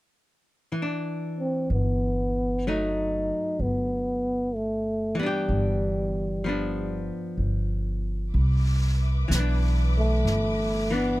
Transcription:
0.72 hollow-body jazz guitar E3
0.82 hollow-body jazz guitar D4
1.39 trombone C4
1.70 upright bass G1, trombone B3
2.67 hollow-body jazz guitar F#3 A3 D#4, trombone D#4
3.59 upright bass G1, trombone B3
4.54 trombone A3
5.15 hollow-body jazz guitar E3
5.19 trombone G3, hollow-body jazz guitar B3 D4
5.26 hollow-body jazz guitar G4
5.49 upright bass G1
6.44 hollow-body jazz guitar F3 B3
6.49 hollow-body jazz guitar D4
7.37 upright bass G1
8.31 upright bass C2, string section B4 E5 B5 D6, brush sweep
9.28 upright bass B1, hollow-body jazz guitar E3, brush sweep, snare, hi-hat pedal
9.35 hollow-body jazz guitar B3
9.39 hollow-body jazz guitar D4
9.98 trombone A3
10.25 upright bass G1, brush sweep, snare
10.90 hollow-body jazz guitar E3 B3 D4, trombone B3

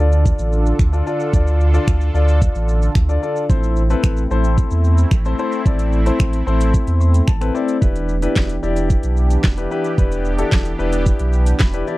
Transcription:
Already playing: analog synth pad D3 D4 F4 A4
0.00 sub bass D2, grand piano D4 F4 A4 D5
0.12 shaker
0.26 kick, shaker
0.39 sub bass A1, shaker
0.53 shaker
0.66 shaker
0.79 sub bass D2, finger snap, kick, shaker
0.93 grand piano D4 F4 A4 D5, shaker
1.06 grand piano D4 F4 A4 D5, shaker
1.20 shaker
1.33 sub bass D2, grand piano D4 F4 A4 D5, kick, shaker
1.47 shaker
1.61 shaker
1.74 grand piano D4 F4 A4 D5, shaker
1.87 sub bass D2, finger snap, kick, shaker
2.01 shaker
2.14 sub bass D2, grand piano D4 F4 A4 D5, shaker
2.28 shaker
2.42 kick, shaker
2.55 sub bass A1, shaker
2.69 shaker
2.82 shaker
2.95 sub bass D2, finger snap, kick, shaker
3.09 grand piano D4 F4 A4 D5, shaker
3.23 grand piano D4 F4 A4 D5, shaker
3.36 shaker
3.49 sub bass A1, analog synth pad A3 C4 E4, grand piano C4 E4 A4 C5, kick, shaker
3.63 shaker
3.76 shaker
3.90 grand piano C4 E4 A4 B4, shaker
4.03 sub bass A1, finger snap, kick, shaker
4.17 shaker
4.31 sub bass A1, grand piano C4 E4 A4 C5, shaker
4.44 shaker
4.57 kick, shaker
4.71 sub bass E2, shaker
4.84 shaker
4.98 shaker
5.11 sub bass A1, finger snap, kick, shaker
5.25 grand piano C4 E4 A4 C5, shaker
5.39 grand piano C4 E4 A4 C5, shaker
5.52 shaker
5.66 sub bass A1, grand piano C4 E4 A4 D5, kick, shaker
5.79 closed hi-hat, shaker
5.92 shaker
6.06 grand piano C4 E4 A4 C5, closed hi-hat, shaker
6.20 sub bass A1, finger snap, kick, shaker
6.33 closed hi-hat, shaker
6.47 sub bass A1, grand piano C4 E4 A4 C5, shaker
6.61 closed hi-hat, shaker
6.74 kick, shaker
6.87 sub bass E2, closed hi-hat, shaker
7.01 grand piano C6, shaker
7.14 closed hi-hat, shaker
7.28 sub bass A1, grand piano A5, finger snap, kick, shaker
7.41 grand piano C4 E4 A4 B4, finger snap, closed hi-hat, shaker
7.54 grand piano C4 E4 A4 D5 E5, shaker
7.68 closed hi-hat, shaker
7.81 sub bass E1, analog synth pad E3 B3 D4 G4, grand piano D4 E4 G4 B4, kick, shaker
7.96 closed hi-hat, shaker
8.09 shaker
8.22 grand piano D4 E4 G4 B4, closed hi-hat, shaker
8.36 sub bass E1, kick, snare, clap, shaker
8.49 closed hi-hat, shaker
8.63 sub bass E1, grand piano D4 E4 G4 D5, shaker
8.76 closed hi-hat, shaker
8.90 kick, shaker
9.03 sub bass B1, closed hi-hat, shaker
9.17 shaker
9.30 closed hi-hat, shaker
9.44 sub bass E1, kick, snare, clap, shaker
9.57 grand piano D4 E4 G4 B4, closed hi-hat, shaker
9.71 grand piano D4 E4 G4 B4, shaker
9.85 closed hi-hat, shaker
9.98 sub bass E1, grand piano D4 E4 G4 B4, kick, shaker
10.12 closed hi-hat, shaker
10.25 shaker
10.38 grand piano D4 E4 G4 A4, closed hi-hat, shaker
10.52 sub bass E1, kick, snare, clap, shaker
10.65 closed hi-hat, shaker
10.79 sub bass E1, grand piano D4 E4 G4 B4, shaker
10.93 closed hi-hat, shaker
11.06 kick, shaker
11.19 sub bass B1, closed hi-hat, shaker
11.33 shaker
11.46 closed hi-hat, shaker
11.59 sub bass E1, grand piano B5, kick, snare, clap, shaker
11.73 grand piano D4 E4 G4 B4, closed hi-hat, shaker
11.87 grand piano D4 E4 G4 D5, shaker

